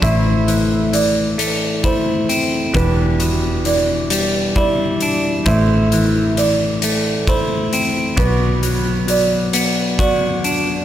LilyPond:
<<
  \new Staff \with { instrumentName = "Felt piano" } { \time 6/8 \key a \dorian \tempo 4. = 44 e''4 d''4 c''4 | b'4 d''4 d''4 | e''4 d''4 c''4 | b'4 d''4 d''4 | }
  \new Staff \with { instrumentName = "Pedal steel guitar" } { \time 6/8 \key a \dorian <a e' c''>2. | <e d' g'>2. | <a e' c''>2. | <b fis' d''>2. | }
  \new Staff \with { instrumentName = "Clean electric guitar" } { \clef bass \time 6/8 \key a \dorian a,8 e8 e8 a8 e'8 c'8 | e,8 b,8 e8 g8 e'8 d'8 | a,8 e8 e8 a8 e'8 c'8 | b,8 fis8 fis8 b8 fis'8 d'8 | }
  \new Staff \with { instrumentName = "Fingered electric bass" } { \clef bass \time 6/8 \key a \dorian a,,2. | e,,2. | a,,2. | b,,2. | }
  \new DrumStaff \with { instrumentName = "Drums" } \drummode { \time 6/8 <hh bd>8 hh8 hh8 hh8 <hh bd>8 hh8 | <hh bd>8 hh8 hh8 hh8 <hh bd>8 hh8 | <hh bd>8 hh8 hh8 hh8 <hh bd>8 hh8 | <hh bd>8 hh8 hh8 hh8 <hh bd>8 hh8 | }
>>